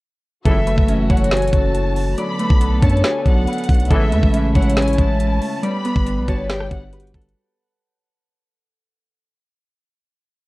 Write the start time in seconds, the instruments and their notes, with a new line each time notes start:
0.45 808-style bass F#1, brass ensemble C#2 A2 E3, string section E3 A3 F#4, synth keys F#3, harp A4, violin section E5, kick, closed hi-hat
0.67 synth keys A3, harp B4, closed hi-hat
0.78 808-style bass F#1, kick
0.88 synth keys C#4, closed hi-hat
1.10 808-style bass F#1, synth keys E4, harp C#5, violin section F#5, kick, closed hi-hat
1.17 closed hi-hat
1.24 closed hi-hat
1.31 synth keys F#4, violin section G#5, snare, closed hi-hat
1.37 closed hi-hat
1.42 closed hi-hat
1.48 closed hi-hat
1.53 808-style bass F#1, synth keys F#3, violin section A5, kick, closed hi-hat
1.75 closed hi-hat
1.96 open hi-hat
2.18 string section D3 B3 A4, synth keys F#3, harp D5, violin section B5, closed hi-hat
2.39 synth keys A3, harp B4, closed hi-hat
2.50 808-style bass B1, kick
2.61 synth keys B3, closed hi-hat
2.83 808-style bass F#2, synth keys D4, harp C#5, violin section A5, kick, closed hi-hat
2.90 closed hi-hat
2.97 closed hi-hat
3.04 synth keys F#4, violin section G#5, snare, closed hi-hat
3.26 808-style bass B1, synth keys F#3, violin section F#5, kick, closed hi-hat
3.47 harp B4, closed hi-hat
3.53 closed hi-hat
3.58 closed hi-hat
3.64 closed hi-hat
3.69 808-style bass B1, kick, closed hi-hat, open hi-hat
3.74 closed hi-hat
3.80 closed hi-hat
3.85 closed hi-hat
3.90 808-style bass A1, brass ensemble C#2 A2 E3, string section C#3 C#4 E4, synth keys G#3, harp A4, violin section E5, kick, closed hi-hat
4.12 808-style bass E2, synth keys A3, harp B4, closed hi-hat
4.23 808-style bass A1, kick
4.34 synth keys C#4, closed hi-hat
4.55 808-style bass A1, synth keys E4, harp C#5, violin section F#5, kick, closed hi-hat
4.62 closed hi-hat
4.70 closed hi-hat
4.77 violin section G#5, snare, closed hi-hat
4.82 closed hi-hat
4.88 closed hi-hat
4.93 closed hi-hat
4.98 808-style bass A1, synth keys G#3, violin section A5, kick, closed hi-hat
5.20 closed hi-hat
5.42 open hi-hat
5.63 synth keys G3, string section G3 B3 B4, harp D5, violin section B5, closed hi-hat
5.85 synth keys B3, harp B4, closed hi-hat
5.96 808-style bass G1, kick
6.06 synth keys D4, closed hi-hat
6.17 808-style bass B1
6.28 808-style bass G1, synth keys F#4, harp C#5, violin section A5, kick, closed hi-hat
6.49 synth keys G4, violin section G5, snare, closed hi-hat
6.60 cross-stick
6.71 808-style bass G1, synth keys G3, violin section F#5, kick, closed hi-hat
6.93 harp B4, closed hi-hat
7.00 closed hi-hat
7.07 closed hi-hat
7.14 808-style bass G1, harp A4, kick, closed hi-hat
7.21 closed hi-hat
7.29 closed hi-hat